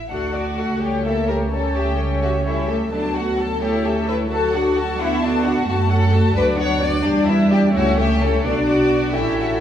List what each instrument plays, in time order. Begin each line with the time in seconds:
0.09 double bass section D2, cello section A3, violin section D4 F#5, viola section F#4 A4
0.33 viola section D4 F#4, violin section F#4 D5
0.58 viola section F#4 A4, violin section F#5
0.81 double bass section C#2, viola section G3 G4, violin section G4 C#5
1.05 viola section A#3 E4, violin section A4 E5
1.28 viola section G3 G4, violin section A#4 C#5
1.51 viola section G3 A4, cello section C#4, violin section A4 C#5
1.75 viola section A3 G4, violin section G4 E5
1.98 viola section G3 A4, violin section C#5
2.21 viola section A3 G4, violin section F#4 E5
2.44 viola section G3 A4, violin section E4 C#5
2.68 viola section A3 G4, violin section A4 E5
2.92 double bass section D2, viola section F#3 A4, cello section B3, violin section D4 A5
3.15 viola section A3 F#4, violin section F#4 F#5
3.38 viola section F#3 A4, violin section A4 A5
3.61 cello section A3, viola section E4 A4, violin section G4 C#5
3.84 viola section C#4 G4, violin section A4 E5
4.08 viola section E4 A4, violin section B4 C#5
4.30 cello section F#3, viola section F#4 A4, violin section A4 A5
4.53 viola section D4 F#4, violin section F#4 F#5
4.76 viola section F#4 A4, violin section A5
4.98 cello section B3, viola section D4 F#4, violin section E4 F#5
5.20 violin section D4 A5, viola section F#4 A4
5.43 viola section D4 F#4, violin section F#4 F#5
5.66 double bass section F#2, cello section A3, viola section A3 F#4, violin section F#4 A5
5.89 viola section C#4 A4, violin section A4 F#5
6.12 viola section A3 F#4, violin section A5
6.34 double bass section D2, cello section F#3, viola section D4 F#4, violin section B4 D5
6.57 viola section B3 D4, violin section C#5 F#5
6.80 viola section D4 F#4, violin section D5
7.03 double bass section E2, cello section G3, violin section D4 D5, viola section D4 G4
7.27 viola section B3 E4, violin section E4 E5
7.50 viola section D4 G4, violin section G4 D5
7.74 double bass section C#2, cello section A3, viola section C#4 E4, violin section F#4 C#5
7.97 viola section A3 C#4, violin section G4 E5
8.21 viola section C#4 E4, violin section A4 C#5
8.44 double bass section B1, cello section B3, violin section D4 D5, viola section D4 F#4
8.67 violin section F#4
9.14 double bass section A1, viola section C#4 A4, cello section E4, violin section G4 E5
9.38 violin section F#4